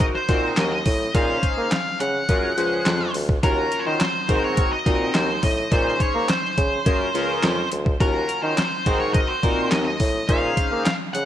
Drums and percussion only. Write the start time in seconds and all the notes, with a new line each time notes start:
0.00 kick, closed hi-hat
0.29 kick, closed hi-hat
0.57 snare, clap, closed hi-hat
0.86 kick, open hi-hat
1.15 kick, closed hi-hat
1.43 kick, closed hi-hat
1.71 snare, clap, closed hi-hat
2.00 closed hi-hat
2.29 kick, closed hi-hat
2.58 closed hi-hat
2.86 snare, clap, closed hi-hat
3.14 open hi-hat
3.29 kick
3.43 kick, closed hi-hat
3.72 closed hi-hat
4.00 snare, clap, closed hi-hat
4.29 kick, closed hi-hat
4.57 kick, closed hi-hat
4.86 kick, closed hi-hat
5.14 snare, clap, closed hi-hat
5.43 kick, open hi-hat
5.72 kick, closed hi-hat
6.00 kick, closed hi-hat
6.29 snare, clap, closed hi-hat
6.58 kick, closed hi-hat
6.86 kick, closed hi-hat
7.15 closed hi-hat
7.43 snare, clap, closed hi-hat
7.72 closed hi-hat
7.86 kick
8.00 kick, closed hi-hat
8.29 closed hi-hat
8.57 snare, clap, closed hi-hat
8.86 kick, closed hi-hat
9.14 kick, closed hi-hat
9.43 kick, closed hi-hat
9.71 snare, clap, closed hi-hat
10.00 kick, open hi-hat
10.29 kick, closed hi-hat
10.57 kick, closed hi-hat
10.86 snare, clap, closed hi-hat
11.15 closed hi-hat